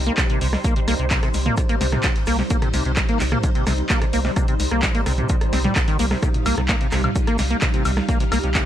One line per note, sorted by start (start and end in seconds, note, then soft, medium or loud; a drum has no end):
0.00 0.11 C2 medium
0.00 8.65 G3 medium
0.00 8.65 D#4 medium
0.00 6.21 C5 medium
0.06 0.13 A#3 loud
0.18 0.24 C3 medium
0.18 kick loud
0.18 cross-stick medium
0.18 snare loud
0.18 clap loud
0.18 closed hi-hat medium
0.18 shaker medium
0.29 0.39 C3 medium
0.29 closed hi-hat soft
0.29 closed hi-hat medium
0.41 0.57 C2 medium
0.41 0.48 C3 medium
0.41 open hi-hat loud
0.41 shaker medium
0.53 cross-stick medium
0.53 snare medium
0.64 0.74 A#3 loud
0.64 kick loud
0.64 closed hi-hat medium
0.64 shaker medium
0.76 0.80 C3 medium
0.76 closed hi-hat medium
0.76 closed hi-hat soft
0.88 0.96 C2 loud
0.88 0.94 A#3 loud
0.88 cross-stick medium
0.88 snare soft
0.88 open hi-hat loud
0.88 shaker medium
0.99 1.15 C2 loud
0.99 1.06 C3 medium
1.11 1.21 C3 medium
1.11 kick loud
1.11 snare loud
1.11 clap loud
1.11 closed hi-hat medium
1.11 shaker medium
1.23 1.29 C3 medium
1.23 cross-stick medium
1.23 snare medium
1.23 closed hi-hat soft
1.34 1.50 C2 medium
1.34 snare soft
1.34 open hi-hat loud
1.34 shaker medium
1.46 1.55 A#3 loud
1.46 mid tom medium
1.57 1.61 C3 medium
1.57 kick loud
1.57 cross-stick medium
1.57 closed hi-hat medium
1.57 shaker medium
1.69 1.76 A#3 loud
1.69 closed hi-hat medium
1.81 1.97 C2 medium
1.81 1.87 C3 medium
1.81 snare medium
1.81 open hi-hat loud
1.81 shaker medium
1.92 2.02 C3 medium
1.92 cross-stick medium
1.92 snare soft
1.92 closed hi-hat soft
1.92 mid tom medium
2.03 2.10 C3 medium
2.03 kick loud
2.03 snare loud
2.03 clap loud
2.03 closed hi-hat medium
2.03 shaker medium
2.16 snare medium
2.16 closed hi-hat medium
2.26 2.43 C2 medium
2.26 2.37 A#3 loud
2.26 cross-stick medium
2.26 snare soft
2.26 open hi-hat loud
2.26 shaker medium
2.39 2.43 C3 medium
2.39 snare medium
2.50 2.57 A#3 loud
2.50 kick loud
2.50 closed hi-hat medium
2.50 shaker medium
2.62 2.69 C3 medium
2.62 cross-stick medium
2.62 closed hi-hat soft
2.62 mid tom medium
2.74 2.82 C2 loud
2.74 2.83 C3 medium
2.74 snare soft
2.74 open hi-hat loud
2.74 shaker medium
2.85 3.01 C2 loud
2.85 2.92 C3 medium
2.85 closed hi-hat soft
2.97 kick loud
2.97 cross-stick medium
2.97 snare loud
2.97 clap loud
2.97 closed hi-hat medium
2.97 shaker medium
3.09 3.18 A#3 loud
3.09 closed hi-hat soft
3.20 3.36 C2 medium
3.20 3.24 C3 medium
3.20 snare soft
3.20 clap medium
3.20 open hi-hat loud
3.20 shaker medium
3.32 3.38 A#3 loud
3.32 cross-stick medium
3.32 closed hi-hat soft
3.32 mid tom medium
3.43 3.50 C3 medium
3.43 kick loud
3.43 closed hi-hat medium
3.43 shaker medium
3.55 3.65 C3 medium
3.55 closed hi-hat medium
3.67 3.83 C2 medium
3.67 3.73 C3 medium
3.67 cross-stick medium
3.67 snare medium
3.67 open hi-hat loud
3.67 shaker medium
3.78 closed hi-hat soft
3.90 4.00 A#3 loud
3.90 kick loud
3.90 snare loud
3.90 clap loud
3.90 closed hi-hat medium
3.90 shaker medium
4.02 4.06 C3 medium
4.02 cross-stick medium
4.02 closed hi-hat soft
4.13 4.29 C2 medium
4.13 4.20 A#3 loud
4.13 open hi-hat loud
4.13 shaker medium
4.25 4.31 C3 medium
4.25 snare medium
4.36 4.46 C3 medium
4.36 kick loud
4.36 cross-stick medium
4.36 closed hi-hat medium
4.36 shaker medium
4.48 4.55 C3 medium
4.48 closed hi-hat soft
4.60 4.68 C2 loud
4.60 snare soft
4.60 open hi-hat loud
4.60 shaker medium
4.71 4.87 C2 medium
4.71 4.81 A#3 loud
4.71 cross-stick medium
4.71 closed hi-hat soft
4.83 4.87 C3 medium
4.83 kick loud
4.83 snare loud
4.83 clap loud
4.83 closed hi-hat medium
4.83 shaker medium
4.94 5.01 A#3 loud
4.94 snare medium
4.94 closed hi-hat soft
5.06 5.22 C2 medium
5.06 5.13 C3 medium
5.06 cross-stick medium
5.06 snare soft
5.06 open hi-hat loud
5.06 shaker medium
5.18 5.28 C3 medium
5.18 closed hi-hat soft
5.18 mid tom medium
5.29 5.36 C3 medium
5.29 kick loud
5.29 closed hi-hat medium
5.29 shaker medium
5.41 cross-stick medium
5.41 closed hi-hat soft
5.53 5.69 C2 medium
5.53 5.59 C4 medium
5.53 snare medium
5.53 open hi-hat loud
5.53 shaker medium
5.64 5.74 G3 loud
5.64 snare soft
5.64 closed hi-hat soft
5.64 mid tom medium
5.76 5.83 C2 medium
5.76 kick loud
5.76 cross-stick medium
5.76 snare loud
5.76 clap loud
5.76 closed hi-hat medium
5.76 shaker medium
5.87 5.97 D#3 loud
5.87 snare medium
5.87 closed hi-hat soft
5.99 6.15 C2 medium
5.99 6.06 A#3 loud
5.99 snare medium
5.99 open hi-hat loud
5.99 shaker medium
6.11 6.17 C3 medium
6.11 cross-stick medium
6.11 snare medium
6.22 6.29 C3 medium
6.22 8.65 F5 medium
6.22 kick loud
6.22 cross-stick medium
6.22 closed hi-hat medium
6.22 shaker medium
6.34 closed hi-hat soft
6.34 mid tom medium
6.46 6.54 C2 loud
6.46 6.56 A#3 medium
6.46 snare soft
6.46 open hi-hat loud
6.46 high woodblock medium
6.46 shaker medium
6.58 6.74 C2 loud
6.58 6.61 C3 medium
6.58 cross-stick medium
6.58 closed hi-hat soft
6.68 6.76 A#3 loud
6.68 kick loud
6.68 snare loud
6.68 clap loud
6.68 closed hi-hat medium
6.68 shaker medium
6.81 6.87 C3 medium
6.81 closed hi-hat soft
6.91 7.08 C2 medium
6.91 7.02 C3 medium
6.91 cross-stick medium
6.91 snare soft
6.91 clap medium
6.91 open hi-hat loud
6.91 shaker medium
7.04 7.11 C3 medium
7.04 closed hi-hat soft
7.04 mid tom medium
7.04 high woodblock medium
7.16 kick loud
7.16 closed hi-hat medium
7.16 shaker medium
7.27 7.37 A#3 loud
7.27 cross-stick medium
7.27 closed hi-hat medium
7.38 7.55 C2 medium
7.38 7.43 C3 medium
7.38 snare medium
7.38 open hi-hat loud
7.38 shaker medium
7.51 7.57 A#3 loud
7.51 closed hi-hat soft
7.62 7.69 C3 medium
7.62 kick loud
7.62 cross-stick medium
7.62 snare loud
7.62 clap loud
7.62 closed hi-hat medium
7.62 shaker medium
7.74 7.83 C3 medium
7.74 closed hi-hat soft
7.85 8.01 C2 medium
7.85 7.92 C3 medium
7.85 open hi-hat loud
7.85 high woodblock medium
7.85 shaker medium
7.97 cross-stick medium
7.97 snare medium
8.09 8.18 A#3 loud
8.09 kick loud
8.09 closed hi-hat medium
8.09 shaker medium
8.20 8.24 C3 medium
8.20 closed hi-hat medium
8.20 closed hi-hat soft
8.32 8.40 C2 loud
8.32 8.38 A#3 medium
8.32 cross-stick medium
8.32 snare soft
8.32 open hi-hat loud
8.32 high woodblock medium
8.32 shaker medium
8.43 8.60 C2 loud
8.43 8.50 C3 medium
8.43 closed hi-hat soft
8.55 8.65 C3 medium
8.55 kick loud
8.55 snare loud
8.55 clap loud
8.55 closed hi-hat medium
8.55 shaker medium